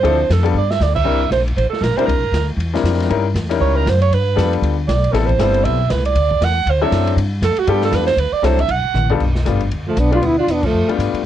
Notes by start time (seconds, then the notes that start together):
Already playing: C5
0.03 D2 F3 C4 D4 E4 A4, ride
0.29 F2 A4, snare, hi-hat pedal, ride
0.43 G3 B3 D4 F4 A4, ride
0.54 G2 D5
0.71 E5, snare
0.80 D2 D5, snare, hi-hat pedal
0.95 E5, kick, crash
1.04 C2 G3 C4 D4 E4 A#4
1.31 A#1 C5, snare, hi-hat pedal, ride
1.48 ride
1.56 A1 C5, ride
1.69 A4, muted upright bass stroke, snare
1.81 A#1 A#4, snare, hi-hat pedal, ride
1.97 G3 C4 D4 E4 A#4 C5, muted upright bass stroke, ride
2.06 C2 A#4, ride
2.16 A#1
2.23 G1
2.31 D2, snare, hi-hat pedal, ride
2.57 E2, ride
2.73 G3 C4 D4 E4 A#4, snare, ride
2.83 F2, snare, hi-hat pedal, ride
2.94 snare
3.00 snare, ride
3.09 G2 G3 C#4 D#4 E4 A#4, ride
3.34 E2, snare, hi-hat pedal, ride
3.49 G3 C#4 D#4 E4 A#4, snare, ride
3.60 C#2 C#5
3.76 A#4
3.86 F#2 C5, snare, hi-hat pedal, ride
4.02 C#5, ride
4.11 G2 B4, ride
4.36 F2 G3 B3 D4 F4 A4, snare, hi-hat pedal, ride
4.53 ride
4.62 D2, ride
4.88 B1 D5, snare, hi-hat pedal, ride
5.04 ride
5.13 A1 G3 B3 C4 E4 A4, snare, ride
5.26 C5, kick, ride
5.39 G1 G3 B3 C4 E4 A4, snare, hi-hat pedal, ride
5.54 ride
5.64 B1 E5, ride
5.90 C2 B4, snare, hi-hat pedal, ride
6.05 D5, ride
6.15 D2, ride
6.31 kick
6.41 E2 F#5, snare, hi-hat pedal, ride
6.66 D2, ride
6.70 C5
6.81 F#3 C4 D4 E4 A4 E5
6.91 F#2, snare, hi-hat pedal, ride
7.07 ride
7.16 G2, ride
7.41 F2 A4, snare, hi-hat pedal, ride
7.57 F#4, muted upright bass stroke, ride
7.67 G2 G3 B3 D4 F4 G4 A4, ride
7.82 A4, snare
7.92 E2 B4, snare, hi-hat pedal, ride
8.07 C5, snare, ride
8.16 D2 B4, ride
8.32 D5, muted upright bass stroke
8.42 C2 F#3 C4 D4 E4 A4 C5, snare, hi-hat pedal, ride
8.59 E5, ride
8.68 B1 F#5, ride
8.85 muted upright bass stroke
8.94 A1, hi-hat pedal, high tom
9.10 G3 B3 D4 F4 A4, floor tom
9.20 B1, kick, crash
9.35 snare
9.45 G1 G3 A3 B3 D4 F4, hi-hat pedal, ride
9.61 ride
9.71 D2, ride
9.88 F3 A3
9.96 B1 B3 D4, hi-hat pedal, ride
10.11 G3 A3 B3 D4 F4, ride
10.22 D2 B3, ride
10.27 E4
10.38 D4 F4
10.47 E2 B3, hi-hat pedal, ride
10.53 D4
10.63 F3 A3, kick, crash
10.72 F2
10.87 G3 A3 B3 D4 F4, muted upright bass stroke, ride
10.98 G2, hi-hat pedal, ride
11.13 muted upright bass stroke, ride